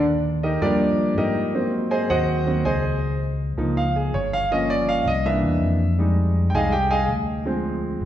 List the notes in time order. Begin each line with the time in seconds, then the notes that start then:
Already playing: D#2
0.43 D#4 G4 A#4 D#5
0.61 G2 F3 G3 A#3 D4 G4 A#4 D5
1.17 G#2 D#4 G4 A#4 D#5
1.54 F#3 A#3 C4
1.91 G#4 C5 D#5 G#5
2.10 D#2 F#4 C5 D#5 F#5
2.47 F#3 A#3 C4
2.65 C#2 G#4 C5 D#5 G#5
3.58 C#2 F3 A#3 D#4
3.77 F5
3.96 G#4
4.14 G1 C#5
4.33 F5
4.51 F3 A#3 C#4 D#5
4.70 D5
4.89 F5
5.06 C2 D#5
5.25 E3 A#3 D4 E5
5.43 E2
5.61 F2
5.99 G3 G#3 D#4
6.50 G5
6.54 C2 G3 G#3 D#4 G#4 D#5 F5 G#5
6.72 G4 G5
6.91 G#4 D#5 F5 G#5
7.09 D2
7.45 F3 G#3 C4
8.01 G1